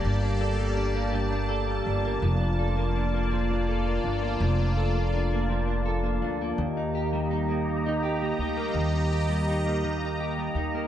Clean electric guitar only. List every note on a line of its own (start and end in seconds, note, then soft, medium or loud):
0.00 1.11 G2 medium
0.00 0.57 G3 medium
0.00 0.94 A#3 medium
0.00 0.22 D4 medium
0.00 0.41 A4 medium
0.22 0.75 D4 medium
0.41 1.48 A4 medium
0.58 1.67 G3 medium
0.75 1.30 D4 medium
0.94 2.04 A#3 medium
1.12 2.29 G2 medium
1.30 1.86 D4 medium
1.49 2.59 A4 medium
1.68 2.29 G3 medium
1.87 2.41 D4 medium
2.05 2.40 A#3 medium
2.22 3.30 F3 medium
2.41 2.95 D4 soft
2.59 3.67 A4 medium
2.77 3.14 A#3 medium
2.96 3.50 D4 medium
3.14 3.86 A#3 medium
3.31 4.40 F3 medium
3.51 4.04 D4 medium
3.69 4.76 A4 medium
3.86 4.22 A#3 medium
4.05 4.58 D4 medium
4.22 4.95 A#3 medium
4.41 5.49 F3 medium
4.59 5.13 D4 medium
4.77 5.84 A4 medium
4.95 5.32 A#3 medium
5.14 5.66 D4 medium
5.33 6.03 A#3 medium
5.50 6.65 F3 medium
5.68 6.21 D4 medium
5.86 6.65 A4 medium
6.03 6.41 A#3 medium
6.22 6.65 D4 medium
6.42 7.48 A#3 medium
6.58 7.66 D#3 medium
6.77 7.30 D#4 medium
6.95 8.03 G4 medium
7.13 8.21 G3 medium
7.31 7.85 D#4 medium
7.49 8.56 A#3 medium
7.86 8.39 D#4 medium
8.03 9.12 G4 medium
8.21 9.28 G3 medium
8.40 8.92 D#4 medium
8.57 9.65 A#3 medium
8.76 9.83 D#3 medium
8.94 9.47 D#4 medium
9.12 10.20 G4 medium
9.29 10.37 G3 medium
9.48 10.02 D#4 medium
9.66 10.74 A#3 medium
9.84 10.87 D#3 medium
10.03 10.55 D#4 medium
10.20 10.87 G4 medium
10.38 10.87 G3 medium
10.56 10.87 D#4 medium
10.75 10.87 A#3 medium